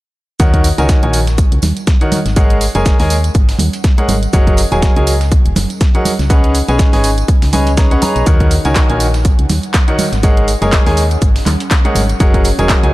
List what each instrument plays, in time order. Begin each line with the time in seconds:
0.40 fm bass D#2, grand piano D#3 F#4 A#4 C#5 D#5 F#5, ambient pad D#4, kick, closed hi-hat, tambourine, shaker
0.54 kick, closed hi-hat
0.64 open hi-hat, tambourine, shaker
0.78 fm bass C#2, grand piano D#3 F#4 A#4 C#5 D#5 G#5, closed hi-hat, tambourine
0.89 kick, snare, closed hi-hat, shaker
1.03 fm bass A#1, grand piano D#3 F#4 A#4 C#5 D#5 G#5, closed hi-hat
1.13 open hi-hat, tambourine, shaker
1.27 ambient pad C#5 F#5, snare, closed hi-hat, tambourine
1.38 kick, closed hi-hat, tambourine, shaker
1.52 fm bass C#2, closed hi-hat
1.62 fm bass D#2, snare, open hi-hat, tambourine, high conga, shaker
1.77 closed hi-hat, tambourine
1.87 kick, snare, closed hi-hat, tambourine, shaker
2.01 grand piano D#3 F#4 A#4 C#5 D#5 F#5, closed hi-hat
2.12 open hi-hat, tambourine, high conga, shaker
2.25 fm bass G#1, snare, closed hi-hat, tambourine
2.36 grand piano G#3 G#4 A#4 C#5 D#5 F#5, ambient pad C#4, kick, closed hi-hat, tambourine, shaker
2.50 closed hi-hat
2.61 open hi-hat, tambourine, shaker
2.74 fm bass F#1, grand piano G#3 G#4 A#4 C#5 D#5 G#5, ambient pad A#4, closed hi-hat, tambourine
2.85 kick, snare, closed hi-hat, tambourine, shaker
3.00 fm bass D#2, grand piano G#3 G#4 A#4 C#5 D#5 G#5, snare, open hi-hat
3.10 open hi-hat, tambourine, shaker
3.24 closed hi-hat, tambourine
3.34 fm bass G#1, kick, closed hi-hat, tambourine, shaker
3.49 snare, open hi-hat
3.59 fm bass D#2, open hi-hat, tambourine, high conga, shaker
3.73 closed hi-hat, tambourine
3.84 kick, snare, closed hi-hat, tambourine, shaker
3.98 grand piano G#3 G#4 A#4 C#5 D#5 F#5, closed hi-hat
4.09 fm bass G#1, open hi-hat, tambourine, high conga, shaker
4.22 closed hi-hat, tambourine
4.33 fm bass F#1, grand piano F#3 G#4 A#4 C#5 D#5 F#5, ambient pad D#4, kick, closed hi-hat, tambourine, shaker
4.47 kick, closed hi-hat
4.57 open hi-hat, tambourine, shaker
4.72 fm bass D#1, grand piano F#3 G#4 A#4 C#5 D#5 G#5, closed hi-hat, tambourine
4.82 kick, snare, closed hi-hat, tambourine, shaker
4.96 fm bass C#2, grand piano F#3 G#4 A#4 C#5 D#5 G#5, closed hi-hat
5.07 open hi-hat, tambourine, shaker
5.21 ambient pad G#5, snare, closed hi-hat, tambourine
5.31 kick, closed hi-hat, tambourine, shaker
5.45 fm bass D#1, closed hi-hat
5.56 fm bass F#1, snare, open hi-hat, tambourine, high conga, shaker
5.70 closed hi-hat, tambourine
5.81 kick, snare, closed hi-hat, shaker
5.95 grand piano F#3 G#4 A#4 C#5 D#5 F#5, closed hi-hat
6.05 open hi-hat, tambourine, high conga, shaker
6.19 fm bass C#2, snare, closed hi-hat, tambourine
6.30 grand piano C#4 G#4 B4 C#5 D#5 F#5, kick, closed hi-hat, tambourine, shaker
6.44 closed hi-hat
6.55 open hi-hat, tambourine, shaker
6.68 fm bass B1, grand piano C#4 G#4 B4 C#5 D#5 G#5, closed hi-hat, tambourine
6.79 kick, snare, closed hi-hat, tambourine, shaker
6.92 fm bass G#1, grand piano C#4 G#4 B4 C#5 D#5 G#5, ambient pad B4, snare, open hi-hat
6.98 ambient pad F#5
7.04 open hi-hat, tambourine, shaker
7.18 closed hi-hat, tambourine
7.28 kick, closed hi-hat, shaker
7.42 fm bass C#2, snare, open hi-hat
7.53 grand piano C#4 G#4 B4 C#5 D#5 G#5, open hi-hat, tambourine, high conga, shaker
7.67 closed hi-hat, tambourine
7.77 grand piano C#4 G#4 B4 C#5 D#5 A#5, kick, snare, closed hi-hat, tambourine, shaker
7.91 grand piano C#4 G#4 B4 C#5 D#5 F#5, closed hi-hat
8.02 grand piano G#4 B4 C#5 D#5 A#5, open hi-hat, tambourine, high conga, shaker
8.16 fm bass B1, closed hi-hat, tambourine
8.26 fm bass D#2, grand piano D#3 F#4 A#4 C#5 D#5 F#5, kick, closed hi-hat, tambourine, shaker
8.40 kick, closed hi-hat
8.51 open hi-hat, tambourine, shaker
8.65 fm bass C#2, grand piano D#3 F#4 A#4 C#5 D#5 G#5, closed hi-hat, tambourine
8.75 kick, snare, clap, closed hi-hat, tambourine, shaker
8.89 fm bass A#1, grand piano D#3 F#4 A#4 C#5 D#5 G#5, closed hi-hat
9.00 open hi-hat, tambourine, shaker
9.12 ambient pad C#5, snare, closed hi-hat, tambourine
9.25 kick, closed hi-hat, tambourine, shaker
9.39 fm bass C#2, closed hi-hat
9.49 fm bass D#2, snare, open hi-hat, tambourine, high conga, shaker
9.63 closed hi-hat, tambourine
9.74 kick, snare, clap, closed hi-hat, tambourine, shaker
9.88 grand piano D#3 F#4 A#4 C#5 D#5 F#5, closed hi-hat
9.99 open hi-hat, tambourine, high conga, shaker
10.13 fm bass G#1, snare, closed hi-hat, tambourine
10.23 grand piano G#3 G#4 A#4 C#5 D#5 F#5, ambient pad C#4, kick, closed hi-hat, tambourine, shaker
10.37 closed hi-hat
10.48 open hi-hat, tambourine, shaker
10.62 fm bass F#1, grand piano G#3 G#4 A#4 C#5 D#5 G#5, closed hi-hat, tambourine
10.72 kick, snare, clap, closed hi-hat, tambourine, shaker
10.85 fm bass D#2, grand piano G#3 G#4 A#4 C#5 D#5 G#5, ambient pad A#4, snare, open hi-hat
10.97 open hi-hat, tambourine, shaker
11.11 closed hi-hat, tambourine
11.22 fm bass G#1, kick, closed hi-hat, tambourine, shaker
11.36 snare, open hi-hat
11.46 fm bass D#2, clap, open hi-hat, tambourine, high conga, shaker
11.60 closed hi-hat, tambourine
11.71 kick, snare, clap, closed hi-hat, tambourine, shaker
11.85 grand piano G#3 G#4 A#4 C#5 D#5 F#5, closed hi-hat
11.95 fm bass G#1, open hi-hat, tambourine, high conga, shaker
12.09 closed hi-hat, tambourine
12.19 fm bass F#1, grand piano F#3 G#4 A#4 C#5 D#5 F#5, ambient pad D#4, kick, closed hi-hat, tambourine, shaker
12.34 kick, closed hi-hat
12.44 open hi-hat, tambourine, shaker
12.58 fm bass D#1, grand piano F#3 G#4 A#4 C#5 D#5 G#5, closed hi-hat, tambourine
12.69 kick, snare, clap, closed hi-hat, tambourine, shaker
12.83 fm bass C#2, grand piano F#3 G#4 A#4 C#5 D#5 G#5, closed hi-hat